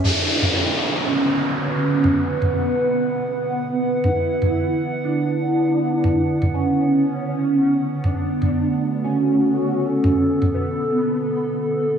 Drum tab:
T2 |o--o------------|o--o------------|o--o------------|o--o------------|

T2 |o--o------------|o--o------------|